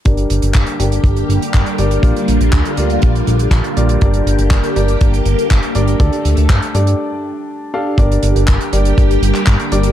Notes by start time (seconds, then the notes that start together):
0.05 G1 D3 G3 A#3 D4 G4 A#4 D5, kick, closed hi-hat
0.17 closed hi-hat
0.30 G1, closed hi-hat
0.42 G1, closed hi-hat
0.54 G1, kick, clap, closed hi-hat
0.66 closed hi-hat
0.79 G1 D4 G4 A#4 D5, closed hi-hat
0.92 closed hi-hat
1.04 G1, kick, closed hi-hat
1.16 closed hi-hat
1.29 G1, closed hi-hat
1.42 closed hi-hat
1.54 G1, kick, clap, closed hi-hat
1.66 closed hi-hat
1.78 G1 D4 G4 A#4 D5, closed hi-hat
1.91 closed hi-hat
2.03 A#1 F4 G4 A#4 D5, kick, closed hi-hat
2.16 closed hi-hat
2.28 A#1, closed hi-hat
2.41 A#1, closed hi-hat
2.53 D2, kick, clap, closed hi-hat
2.65 closed hi-hat
2.77 D2 F4 G4 A#4 D5, closed hi-hat
2.90 closed hi-hat
3.02 A#1, kick, closed hi-hat
3.15 closed hi-hat
3.27 A#1, closed hi-hat
3.39 closed hi-hat
3.51 A#1, kick, clap, closed hi-hat
3.64 closed hi-hat
3.77 A#1 F4 G4 A#4 D5, closed hi-hat
3.89 closed hi-hat
4.01 G1 A#3 D4 G4 A#4 D5, kick, closed hi-hat
4.14 closed hi-hat
4.26 G1, closed hi-hat
4.39 G1, closed hi-hat
4.51 G1, kick, clap, closed hi-hat
4.64 closed hi-hat
4.76 G1 D4 G4 A#4 D5, closed hi-hat
4.88 closed hi-hat
5.01 G1, kick, closed hi-hat
5.14 closed hi-hat
5.25 G1, closed hi-hat
5.39 closed hi-hat
5.51 G1, kick, clap, closed hi-hat
5.63 closed hi-hat
5.75 G1 D4 G4 A#4 D5, closed hi-hat
5.88 closed hi-hat
6.00 D2 A3 D4 G4 A4 D5, kick, closed hi-hat
6.13 closed hi-hat
6.25 D2, closed hi-hat
6.37 D2, closed hi-hat
6.50 G2, kick, clap, closed hi-hat
6.62 closed hi-hat
6.75 G2 D4 G4 A4 D5, closed hi-hat
6.87 closed hi-hat
7.74 D4 G4 A4 F5
7.98 G1 D3 G3 A#3 D4 G4 A#4 D5, kick, closed hi-hat
8.12 closed hi-hat
8.23 G1, closed hi-hat
8.36 G1, closed hi-hat
8.47 G1, kick, clap, closed hi-hat
8.61 closed hi-hat
8.73 G1 D4 G4 A#4 D5, closed hi-hat
8.85 closed hi-hat
8.98 G1, kick, closed hi-hat
9.11 closed hi-hat
9.22 G1, closed hi-hat
9.35 clap, closed hi-hat
9.47 G1, kick, clap, closed hi-hat
9.60 closed hi-hat
9.72 G1 D4 G4 A#4 D5, closed hi-hat
9.83 closed hi-hat